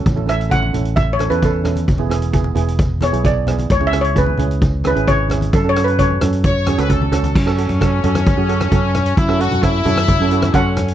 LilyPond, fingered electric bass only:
\new Staff \with { instrumentName = "Fingered electric bass" } { \clef bass \time 4/4 \key fis \minor \tempo 4 = 132 a,,4. a,,4~ a,,16 e,4~ e,16 | e,,4. e,,4~ e,,16 b,,4~ b,,16 | cis,4. cis,4~ cis,16 gis,,4~ gis,,16 | fis,4. fis,4~ fis,16 cis,4~ cis,16 |
fis,8. fis,8. fis,8. fis,8. fis,4 | fis,8. fis,8. fis,8. fis,8. fis,4 | }